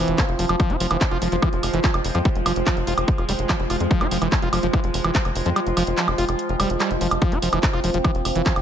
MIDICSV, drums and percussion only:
0, 0, Header, 1, 2, 480
1, 0, Start_track
1, 0, Key_signature, -4, "minor"
1, 0, Tempo, 413793
1, 691, Time_signature, 4, 2, 24, 8
1, 9997, End_track
2, 0, Start_track
2, 0, Title_t, "Drums"
2, 92, Note_on_c, 9, 42, 51
2, 208, Note_off_c, 9, 42, 0
2, 212, Note_on_c, 9, 36, 120
2, 212, Note_on_c, 9, 39, 121
2, 212, Note_on_c, 9, 42, 49
2, 212, Note_on_c, 9, 76, 39
2, 328, Note_off_c, 9, 36, 0
2, 328, Note_off_c, 9, 39, 0
2, 328, Note_off_c, 9, 42, 0
2, 328, Note_off_c, 9, 76, 0
2, 332, Note_on_c, 9, 42, 24
2, 448, Note_off_c, 9, 42, 0
2, 452, Note_on_c, 9, 46, 98
2, 568, Note_off_c, 9, 46, 0
2, 572, Note_on_c, 9, 42, 49
2, 572, Note_on_c, 9, 76, 78
2, 688, Note_off_c, 9, 42, 0
2, 688, Note_off_c, 9, 76, 0
2, 692, Note_on_c, 9, 36, 117
2, 692, Note_on_c, 9, 42, 50
2, 692, Note_on_c, 9, 76, 39
2, 808, Note_off_c, 9, 36, 0
2, 808, Note_off_c, 9, 42, 0
2, 808, Note_off_c, 9, 76, 0
2, 812, Note_on_c, 9, 42, 27
2, 928, Note_off_c, 9, 42, 0
2, 932, Note_on_c, 9, 46, 104
2, 1048, Note_off_c, 9, 46, 0
2, 1052, Note_on_c, 9, 42, 54
2, 1052, Note_on_c, 9, 76, 78
2, 1168, Note_off_c, 9, 42, 0
2, 1168, Note_off_c, 9, 76, 0
2, 1172, Note_on_c, 9, 36, 124
2, 1172, Note_on_c, 9, 39, 107
2, 1172, Note_on_c, 9, 42, 49
2, 1288, Note_off_c, 9, 36, 0
2, 1288, Note_off_c, 9, 39, 0
2, 1288, Note_off_c, 9, 42, 0
2, 1292, Note_on_c, 9, 42, 25
2, 1292, Note_on_c, 9, 76, 38
2, 1408, Note_off_c, 9, 42, 0
2, 1408, Note_off_c, 9, 76, 0
2, 1412, Note_on_c, 9, 46, 98
2, 1528, Note_off_c, 9, 46, 0
2, 1532, Note_on_c, 9, 42, 50
2, 1648, Note_off_c, 9, 42, 0
2, 1652, Note_on_c, 9, 36, 118
2, 1652, Note_on_c, 9, 42, 50
2, 1652, Note_on_c, 9, 76, 81
2, 1768, Note_off_c, 9, 36, 0
2, 1768, Note_off_c, 9, 42, 0
2, 1768, Note_off_c, 9, 76, 0
2, 1772, Note_on_c, 9, 42, 26
2, 1888, Note_off_c, 9, 42, 0
2, 1892, Note_on_c, 9, 46, 107
2, 1892, Note_on_c, 9, 76, 39
2, 2008, Note_off_c, 9, 46, 0
2, 2008, Note_off_c, 9, 76, 0
2, 2012, Note_on_c, 9, 42, 51
2, 2128, Note_off_c, 9, 42, 0
2, 2132, Note_on_c, 9, 36, 118
2, 2132, Note_on_c, 9, 39, 120
2, 2132, Note_on_c, 9, 42, 54
2, 2248, Note_off_c, 9, 36, 0
2, 2248, Note_off_c, 9, 39, 0
2, 2248, Note_off_c, 9, 42, 0
2, 2252, Note_on_c, 9, 42, 26
2, 2252, Note_on_c, 9, 76, 81
2, 2368, Note_off_c, 9, 42, 0
2, 2368, Note_off_c, 9, 76, 0
2, 2372, Note_on_c, 9, 46, 95
2, 2488, Note_off_c, 9, 46, 0
2, 2492, Note_on_c, 9, 42, 51
2, 2492, Note_on_c, 9, 76, 40
2, 2608, Note_off_c, 9, 42, 0
2, 2608, Note_off_c, 9, 76, 0
2, 2612, Note_on_c, 9, 36, 122
2, 2612, Note_on_c, 9, 42, 53
2, 2728, Note_off_c, 9, 36, 0
2, 2728, Note_off_c, 9, 42, 0
2, 2732, Note_on_c, 9, 42, 27
2, 2848, Note_off_c, 9, 42, 0
2, 2852, Note_on_c, 9, 46, 100
2, 2852, Note_on_c, 9, 76, 82
2, 2968, Note_off_c, 9, 46, 0
2, 2968, Note_off_c, 9, 76, 0
2, 2972, Note_on_c, 9, 42, 54
2, 3088, Note_off_c, 9, 42, 0
2, 3092, Note_on_c, 9, 36, 115
2, 3092, Note_on_c, 9, 39, 110
2, 3092, Note_on_c, 9, 42, 52
2, 3092, Note_on_c, 9, 76, 41
2, 3208, Note_off_c, 9, 36, 0
2, 3208, Note_off_c, 9, 39, 0
2, 3208, Note_off_c, 9, 42, 0
2, 3208, Note_off_c, 9, 76, 0
2, 3212, Note_on_c, 9, 42, 26
2, 3328, Note_off_c, 9, 42, 0
2, 3332, Note_on_c, 9, 46, 90
2, 3448, Note_off_c, 9, 46, 0
2, 3452, Note_on_c, 9, 42, 49
2, 3452, Note_on_c, 9, 76, 82
2, 3568, Note_off_c, 9, 42, 0
2, 3568, Note_off_c, 9, 76, 0
2, 3572, Note_on_c, 9, 36, 118
2, 3572, Note_on_c, 9, 42, 53
2, 3688, Note_off_c, 9, 36, 0
2, 3688, Note_off_c, 9, 42, 0
2, 3692, Note_on_c, 9, 42, 25
2, 3692, Note_on_c, 9, 76, 39
2, 3808, Note_off_c, 9, 42, 0
2, 3808, Note_off_c, 9, 76, 0
2, 3812, Note_on_c, 9, 46, 99
2, 3928, Note_off_c, 9, 46, 0
2, 3932, Note_on_c, 9, 42, 54
2, 4048, Note_off_c, 9, 42, 0
2, 4052, Note_on_c, 9, 36, 110
2, 4052, Note_on_c, 9, 39, 120
2, 4052, Note_on_c, 9, 42, 54
2, 4052, Note_on_c, 9, 76, 84
2, 4168, Note_off_c, 9, 36, 0
2, 4168, Note_off_c, 9, 39, 0
2, 4168, Note_off_c, 9, 42, 0
2, 4168, Note_off_c, 9, 76, 0
2, 4172, Note_on_c, 9, 42, 27
2, 4288, Note_off_c, 9, 42, 0
2, 4292, Note_on_c, 9, 46, 93
2, 4292, Note_on_c, 9, 76, 42
2, 4408, Note_off_c, 9, 46, 0
2, 4408, Note_off_c, 9, 76, 0
2, 4412, Note_on_c, 9, 42, 54
2, 4528, Note_off_c, 9, 42, 0
2, 4532, Note_on_c, 9, 36, 122
2, 4532, Note_on_c, 9, 42, 55
2, 4648, Note_off_c, 9, 36, 0
2, 4648, Note_off_c, 9, 42, 0
2, 4652, Note_on_c, 9, 42, 28
2, 4652, Note_on_c, 9, 76, 90
2, 4768, Note_off_c, 9, 42, 0
2, 4768, Note_off_c, 9, 76, 0
2, 4772, Note_on_c, 9, 46, 101
2, 4888, Note_off_c, 9, 46, 0
2, 4892, Note_on_c, 9, 42, 55
2, 4892, Note_on_c, 9, 76, 41
2, 5008, Note_off_c, 9, 42, 0
2, 5008, Note_off_c, 9, 76, 0
2, 5012, Note_on_c, 9, 36, 118
2, 5012, Note_on_c, 9, 39, 121
2, 5012, Note_on_c, 9, 42, 51
2, 5128, Note_off_c, 9, 36, 0
2, 5128, Note_off_c, 9, 39, 0
2, 5128, Note_off_c, 9, 42, 0
2, 5132, Note_on_c, 9, 42, 26
2, 5248, Note_off_c, 9, 42, 0
2, 5252, Note_on_c, 9, 46, 93
2, 5252, Note_on_c, 9, 76, 84
2, 5368, Note_off_c, 9, 46, 0
2, 5368, Note_off_c, 9, 76, 0
2, 5372, Note_on_c, 9, 42, 51
2, 5488, Note_off_c, 9, 42, 0
2, 5492, Note_on_c, 9, 36, 114
2, 5492, Note_on_c, 9, 42, 56
2, 5492, Note_on_c, 9, 76, 41
2, 5608, Note_off_c, 9, 36, 0
2, 5608, Note_off_c, 9, 42, 0
2, 5608, Note_off_c, 9, 76, 0
2, 5612, Note_on_c, 9, 42, 27
2, 5728, Note_off_c, 9, 42, 0
2, 5732, Note_on_c, 9, 46, 99
2, 5848, Note_off_c, 9, 46, 0
2, 5852, Note_on_c, 9, 42, 54
2, 5852, Note_on_c, 9, 76, 85
2, 5968, Note_off_c, 9, 42, 0
2, 5968, Note_off_c, 9, 76, 0
2, 5972, Note_on_c, 9, 36, 110
2, 5972, Note_on_c, 9, 39, 122
2, 5972, Note_on_c, 9, 42, 56
2, 6088, Note_off_c, 9, 36, 0
2, 6088, Note_off_c, 9, 39, 0
2, 6088, Note_off_c, 9, 42, 0
2, 6092, Note_on_c, 9, 42, 29
2, 6092, Note_on_c, 9, 76, 45
2, 6208, Note_off_c, 9, 42, 0
2, 6208, Note_off_c, 9, 76, 0
2, 6212, Note_on_c, 9, 46, 88
2, 6328, Note_off_c, 9, 46, 0
2, 6332, Note_on_c, 9, 42, 58
2, 6448, Note_off_c, 9, 42, 0
2, 6452, Note_on_c, 9, 42, 57
2, 6452, Note_on_c, 9, 76, 82
2, 6568, Note_off_c, 9, 42, 0
2, 6568, Note_off_c, 9, 76, 0
2, 6572, Note_on_c, 9, 42, 29
2, 6688, Note_off_c, 9, 42, 0
2, 6692, Note_on_c, 9, 46, 107
2, 6692, Note_on_c, 9, 76, 41
2, 6808, Note_off_c, 9, 46, 0
2, 6808, Note_off_c, 9, 76, 0
2, 6812, Note_on_c, 9, 42, 57
2, 6928, Note_off_c, 9, 42, 0
2, 6932, Note_on_c, 9, 39, 114
2, 6932, Note_on_c, 9, 42, 57
2, 7048, Note_off_c, 9, 39, 0
2, 7048, Note_off_c, 9, 42, 0
2, 7052, Note_on_c, 9, 42, 26
2, 7052, Note_on_c, 9, 76, 79
2, 7168, Note_off_c, 9, 42, 0
2, 7168, Note_off_c, 9, 76, 0
2, 7172, Note_on_c, 9, 46, 86
2, 7288, Note_off_c, 9, 46, 0
2, 7292, Note_on_c, 9, 42, 55
2, 7292, Note_on_c, 9, 76, 38
2, 7408, Note_off_c, 9, 42, 0
2, 7408, Note_off_c, 9, 76, 0
2, 7412, Note_on_c, 9, 42, 57
2, 7528, Note_off_c, 9, 42, 0
2, 7532, Note_on_c, 9, 42, 27
2, 7648, Note_off_c, 9, 42, 0
2, 7652, Note_on_c, 9, 46, 102
2, 7652, Note_on_c, 9, 76, 85
2, 7768, Note_off_c, 9, 46, 0
2, 7768, Note_off_c, 9, 76, 0
2, 7772, Note_on_c, 9, 42, 55
2, 7888, Note_off_c, 9, 42, 0
2, 7892, Note_on_c, 9, 39, 125
2, 7892, Note_on_c, 9, 42, 57
2, 7892, Note_on_c, 9, 76, 43
2, 8008, Note_off_c, 9, 39, 0
2, 8008, Note_off_c, 9, 42, 0
2, 8008, Note_off_c, 9, 76, 0
2, 8012, Note_on_c, 9, 42, 27
2, 8128, Note_off_c, 9, 42, 0
2, 8131, Note_on_c, 9, 46, 91
2, 8247, Note_off_c, 9, 46, 0
2, 8251, Note_on_c, 9, 42, 57
2, 8251, Note_on_c, 9, 76, 82
2, 8367, Note_off_c, 9, 42, 0
2, 8367, Note_off_c, 9, 76, 0
2, 8371, Note_on_c, 9, 42, 56
2, 8371, Note_on_c, 9, 76, 39
2, 8372, Note_on_c, 9, 36, 118
2, 8487, Note_off_c, 9, 42, 0
2, 8487, Note_off_c, 9, 76, 0
2, 8488, Note_off_c, 9, 36, 0
2, 8492, Note_on_c, 9, 42, 27
2, 8608, Note_off_c, 9, 42, 0
2, 8611, Note_on_c, 9, 46, 109
2, 8727, Note_off_c, 9, 46, 0
2, 8731, Note_on_c, 9, 42, 59
2, 8731, Note_on_c, 9, 76, 85
2, 8847, Note_off_c, 9, 42, 0
2, 8847, Note_off_c, 9, 76, 0
2, 8851, Note_on_c, 9, 39, 122
2, 8851, Note_on_c, 9, 42, 53
2, 8852, Note_on_c, 9, 36, 125
2, 8967, Note_off_c, 9, 39, 0
2, 8967, Note_off_c, 9, 42, 0
2, 8968, Note_off_c, 9, 36, 0
2, 8971, Note_on_c, 9, 42, 27
2, 8971, Note_on_c, 9, 76, 36
2, 9087, Note_off_c, 9, 42, 0
2, 9087, Note_off_c, 9, 76, 0
2, 9092, Note_on_c, 9, 46, 97
2, 9208, Note_off_c, 9, 46, 0
2, 9212, Note_on_c, 9, 42, 55
2, 9328, Note_off_c, 9, 42, 0
2, 9332, Note_on_c, 9, 36, 121
2, 9332, Note_on_c, 9, 42, 57
2, 9332, Note_on_c, 9, 76, 82
2, 9448, Note_off_c, 9, 36, 0
2, 9448, Note_off_c, 9, 42, 0
2, 9448, Note_off_c, 9, 76, 0
2, 9452, Note_on_c, 9, 42, 28
2, 9568, Note_off_c, 9, 42, 0
2, 9572, Note_on_c, 9, 46, 108
2, 9572, Note_on_c, 9, 76, 39
2, 9688, Note_off_c, 9, 46, 0
2, 9688, Note_off_c, 9, 76, 0
2, 9692, Note_on_c, 9, 42, 57
2, 9808, Note_off_c, 9, 42, 0
2, 9812, Note_on_c, 9, 36, 119
2, 9812, Note_on_c, 9, 39, 122
2, 9812, Note_on_c, 9, 42, 55
2, 9928, Note_off_c, 9, 36, 0
2, 9928, Note_off_c, 9, 39, 0
2, 9928, Note_off_c, 9, 42, 0
2, 9932, Note_on_c, 9, 42, 29
2, 9932, Note_on_c, 9, 76, 79
2, 9997, Note_off_c, 9, 42, 0
2, 9997, Note_off_c, 9, 76, 0
2, 9997, End_track
0, 0, End_of_file